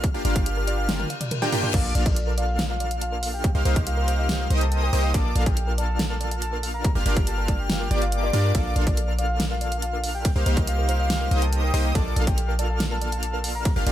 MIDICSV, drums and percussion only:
0, 0, Header, 1, 2, 480
1, 0, Start_track
1, 0, Key_signature, -2, "major"
1, 0, Tempo, 425532
1, 41, Time_signature, 4, 2, 24, 8
1, 15701, End_track
2, 0, Start_track
2, 0, Title_t, "Drums"
2, 41, Note_on_c, 9, 36, 121
2, 41, Note_on_c, 9, 42, 87
2, 154, Note_off_c, 9, 36, 0
2, 154, Note_off_c, 9, 42, 0
2, 281, Note_on_c, 9, 42, 71
2, 394, Note_off_c, 9, 42, 0
2, 403, Note_on_c, 9, 36, 104
2, 403, Note_on_c, 9, 42, 70
2, 515, Note_off_c, 9, 42, 0
2, 516, Note_off_c, 9, 36, 0
2, 521, Note_on_c, 9, 42, 84
2, 634, Note_off_c, 9, 42, 0
2, 761, Note_on_c, 9, 42, 71
2, 874, Note_off_c, 9, 42, 0
2, 1001, Note_on_c, 9, 38, 118
2, 1001, Note_on_c, 9, 42, 82
2, 1001, Note_on_c, 9, 48, 61
2, 1114, Note_off_c, 9, 38, 0
2, 1114, Note_off_c, 9, 42, 0
2, 1114, Note_off_c, 9, 48, 0
2, 1123, Note_on_c, 9, 48, 58
2, 1235, Note_off_c, 9, 48, 0
2, 1241, Note_on_c, 9, 42, 70
2, 1354, Note_off_c, 9, 42, 0
2, 1362, Note_on_c, 9, 42, 71
2, 1362, Note_on_c, 9, 47, 68
2, 1475, Note_off_c, 9, 42, 0
2, 1475, Note_off_c, 9, 47, 0
2, 1480, Note_on_c, 9, 42, 84
2, 1480, Note_on_c, 9, 47, 91
2, 1593, Note_off_c, 9, 42, 0
2, 1593, Note_off_c, 9, 47, 0
2, 1602, Note_on_c, 9, 38, 36
2, 1715, Note_off_c, 9, 38, 0
2, 1720, Note_on_c, 9, 45, 100
2, 1720, Note_on_c, 9, 46, 95
2, 1833, Note_off_c, 9, 45, 0
2, 1833, Note_off_c, 9, 46, 0
2, 1842, Note_on_c, 9, 45, 89
2, 1955, Note_off_c, 9, 45, 0
2, 1961, Note_on_c, 9, 36, 124
2, 1961, Note_on_c, 9, 42, 86
2, 1961, Note_on_c, 9, 49, 77
2, 2073, Note_off_c, 9, 42, 0
2, 2073, Note_off_c, 9, 49, 0
2, 2074, Note_off_c, 9, 36, 0
2, 2201, Note_on_c, 9, 42, 71
2, 2314, Note_off_c, 9, 42, 0
2, 2322, Note_on_c, 9, 36, 108
2, 2322, Note_on_c, 9, 42, 69
2, 2435, Note_off_c, 9, 36, 0
2, 2435, Note_off_c, 9, 42, 0
2, 2441, Note_on_c, 9, 42, 81
2, 2554, Note_off_c, 9, 42, 0
2, 2681, Note_on_c, 9, 42, 69
2, 2793, Note_off_c, 9, 42, 0
2, 2921, Note_on_c, 9, 38, 116
2, 2921, Note_on_c, 9, 42, 86
2, 3034, Note_off_c, 9, 38, 0
2, 3034, Note_off_c, 9, 42, 0
2, 3161, Note_on_c, 9, 42, 72
2, 3274, Note_off_c, 9, 42, 0
2, 3282, Note_on_c, 9, 42, 70
2, 3395, Note_off_c, 9, 42, 0
2, 3400, Note_on_c, 9, 42, 82
2, 3513, Note_off_c, 9, 42, 0
2, 3641, Note_on_c, 9, 46, 93
2, 3754, Note_off_c, 9, 46, 0
2, 3881, Note_on_c, 9, 36, 127
2, 3881, Note_on_c, 9, 42, 85
2, 3994, Note_off_c, 9, 36, 0
2, 3994, Note_off_c, 9, 42, 0
2, 4122, Note_on_c, 9, 42, 67
2, 4234, Note_off_c, 9, 42, 0
2, 4243, Note_on_c, 9, 36, 112
2, 4243, Note_on_c, 9, 42, 69
2, 4356, Note_off_c, 9, 36, 0
2, 4356, Note_off_c, 9, 42, 0
2, 4361, Note_on_c, 9, 42, 81
2, 4474, Note_off_c, 9, 42, 0
2, 4601, Note_on_c, 9, 42, 69
2, 4714, Note_off_c, 9, 42, 0
2, 4841, Note_on_c, 9, 38, 124
2, 4841, Note_on_c, 9, 42, 79
2, 4954, Note_off_c, 9, 38, 0
2, 4954, Note_off_c, 9, 42, 0
2, 5081, Note_on_c, 9, 42, 69
2, 5194, Note_off_c, 9, 42, 0
2, 5203, Note_on_c, 9, 42, 66
2, 5315, Note_off_c, 9, 42, 0
2, 5321, Note_on_c, 9, 42, 85
2, 5434, Note_off_c, 9, 42, 0
2, 5561, Note_on_c, 9, 46, 90
2, 5673, Note_off_c, 9, 46, 0
2, 5801, Note_on_c, 9, 36, 127
2, 5801, Note_on_c, 9, 42, 84
2, 5914, Note_off_c, 9, 36, 0
2, 5914, Note_off_c, 9, 42, 0
2, 6041, Note_on_c, 9, 42, 69
2, 6154, Note_off_c, 9, 42, 0
2, 6162, Note_on_c, 9, 42, 63
2, 6163, Note_on_c, 9, 36, 110
2, 6275, Note_off_c, 9, 36, 0
2, 6275, Note_off_c, 9, 42, 0
2, 6281, Note_on_c, 9, 42, 80
2, 6393, Note_off_c, 9, 42, 0
2, 6521, Note_on_c, 9, 42, 64
2, 6634, Note_off_c, 9, 42, 0
2, 6761, Note_on_c, 9, 38, 122
2, 6761, Note_on_c, 9, 42, 79
2, 6874, Note_off_c, 9, 38, 0
2, 6874, Note_off_c, 9, 42, 0
2, 7001, Note_on_c, 9, 42, 65
2, 7114, Note_off_c, 9, 42, 0
2, 7122, Note_on_c, 9, 42, 66
2, 7235, Note_off_c, 9, 42, 0
2, 7241, Note_on_c, 9, 42, 78
2, 7354, Note_off_c, 9, 42, 0
2, 7481, Note_on_c, 9, 46, 87
2, 7594, Note_off_c, 9, 46, 0
2, 7721, Note_on_c, 9, 36, 127
2, 7721, Note_on_c, 9, 42, 80
2, 7834, Note_off_c, 9, 36, 0
2, 7834, Note_off_c, 9, 42, 0
2, 7961, Note_on_c, 9, 42, 65
2, 8074, Note_off_c, 9, 42, 0
2, 8083, Note_on_c, 9, 36, 113
2, 8083, Note_on_c, 9, 42, 62
2, 8195, Note_off_c, 9, 42, 0
2, 8196, Note_off_c, 9, 36, 0
2, 8201, Note_on_c, 9, 42, 76
2, 8314, Note_off_c, 9, 42, 0
2, 8441, Note_on_c, 9, 36, 62
2, 8441, Note_on_c, 9, 42, 64
2, 8554, Note_off_c, 9, 36, 0
2, 8554, Note_off_c, 9, 42, 0
2, 8681, Note_on_c, 9, 38, 124
2, 8681, Note_on_c, 9, 42, 74
2, 8794, Note_off_c, 9, 38, 0
2, 8794, Note_off_c, 9, 42, 0
2, 8921, Note_on_c, 9, 42, 63
2, 9034, Note_off_c, 9, 42, 0
2, 9043, Note_on_c, 9, 42, 64
2, 9156, Note_off_c, 9, 42, 0
2, 9162, Note_on_c, 9, 42, 76
2, 9274, Note_off_c, 9, 42, 0
2, 9401, Note_on_c, 9, 46, 89
2, 9514, Note_off_c, 9, 46, 0
2, 9641, Note_on_c, 9, 42, 80
2, 9641, Note_on_c, 9, 51, 53
2, 9642, Note_on_c, 9, 36, 121
2, 9754, Note_off_c, 9, 36, 0
2, 9754, Note_off_c, 9, 42, 0
2, 9754, Note_off_c, 9, 51, 0
2, 9881, Note_on_c, 9, 42, 66
2, 9994, Note_off_c, 9, 42, 0
2, 10003, Note_on_c, 9, 36, 107
2, 10003, Note_on_c, 9, 42, 65
2, 10115, Note_off_c, 9, 42, 0
2, 10116, Note_off_c, 9, 36, 0
2, 10121, Note_on_c, 9, 42, 79
2, 10234, Note_off_c, 9, 42, 0
2, 10361, Note_on_c, 9, 42, 65
2, 10474, Note_off_c, 9, 42, 0
2, 10601, Note_on_c, 9, 38, 118
2, 10601, Note_on_c, 9, 42, 75
2, 10601, Note_on_c, 9, 51, 41
2, 10714, Note_off_c, 9, 38, 0
2, 10714, Note_off_c, 9, 42, 0
2, 10714, Note_off_c, 9, 51, 0
2, 10841, Note_on_c, 9, 42, 63
2, 10954, Note_off_c, 9, 42, 0
2, 10962, Note_on_c, 9, 42, 64
2, 11075, Note_off_c, 9, 42, 0
2, 11081, Note_on_c, 9, 42, 77
2, 11194, Note_off_c, 9, 42, 0
2, 11321, Note_on_c, 9, 46, 91
2, 11433, Note_off_c, 9, 46, 0
2, 11561, Note_on_c, 9, 42, 83
2, 11561, Note_on_c, 9, 51, 54
2, 11562, Note_on_c, 9, 36, 120
2, 11673, Note_off_c, 9, 42, 0
2, 11673, Note_off_c, 9, 51, 0
2, 11674, Note_off_c, 9, 36, 0
2, 11800, Note_on_c, 9, 42, 68
2, 11913, Note_off_c, 9, 42, 0
2, 11922, Note_on_c, 9, 42, 65
2, 11923, Note_on_c, 9, 36, 105
2, 12034, Note_off_c, 9, 42, 0
2, 12036, Note_off_c, 9, 36, 0
2, 12040, Note_on_c, 9, 42, 82
2, 12153, Note_off_c, 9, 42, 0
2, 12281, Note_on_c, 9, 42, 68
2, 12394, Note_off_c, 9, 42, 0
2, 12521, Note_on_c, 9, 38, 115
2, 12521, Note_on_c, 9, 42, 78
2, 12521, Note_on_c, 9, 51, 43
2, 12634, Note_off_c, 9, 38, 0
2, 12634, Note_off_c, 9, 42, 0
2, 12634, Note_off_c, 9, 51, 0
2, 12761, Note_on_c, 9, 42, 66
2, 12874, Note_off_c, 9, 42, 0
2, 12882, Note_on_c, 9, 42, 65
2, 12995, Note_off_c, 9, 42, 0
2, 13001, Note_on_c, 9, 42, 83
2, 13114, Note_off_c, 9, 42, 0
2, 13241, Note_on_c, 9, 46, 95
2, 13354, Note_off_c, 9, 46, 0
2, 13481, Note_on_c, 9, 36, 122
2, 13481, Note_on_c, 9, 42, 85
2, 13481, Note_on_c, 9, 51, 51
2, 13594, Note_off_c, 9, 36, 0
2, 13594, Note_off_c, 9, 42, 0
2, 13594, Note_off_c, 9, 51, 0
2, 13721, Note_on_c, 9, 42, 73
2, 13834, Note_off_c, 9, 42, 0
2, 13843, Note_on_c, 9, 36, 102
2, 13843, Note_on_c, 9, 42, 69
2, 13955, Note_off_c, 9, 42, 0
2, 13956, Note_off_c, 9, 36, 0
2, 13961, Note_on_c, 9, 42, 83
2, 14074, Note_off_c, 9, 42, 0
2, 14201, Note_on_c, 9, 42, 72
2, 14313, Note_off_c, 9, 42, 0
2, 14441, Note_on_c, 9, 38, 114
2, 14441, Note_on_c, 9, 42, 83
2, 14441, Note_on_c, 9, 51, 41
2, 14553, Note_off_c, 9, 38, 0
2, 14553, Note_off_c, 9, 42, 0
2, 14553, Note_off_c, 9, 51, 0
2, 14681, Note_on_c, 9, 42, 69
2, 14794, Note_off_c, 9, 42, 0
2, 14803, Note_on_c, 9, 42, 69
2, 14915, Note_off_c, 9, 42, 0
2, 14921, Note_on_c, 9, 42, 83
2, 15034, Note_off_c, 9, 42, 0
2, 15160, Note_on_c, 9, 46, 100
2, 15273, Note_off_c, 9, 46, 0
2, 15400, Note_on_c, 9, 42, 87
2, 15400, Note_on_c, 9, 51, 48
2, 15401, Note_on_c, 9, 36, 121
2, 15513, Note_off_c, 9, 42, 0
2, 15513, Note_off_c, 9, 51, 0
2, 15514, Note_off_c, 9, 36, 0
2, 15640, Note_on_c, 9, 42, 73
2, 15701, Note_off_c, 9, 42, 0
2, 15701, End_track
0, 0, End_of_file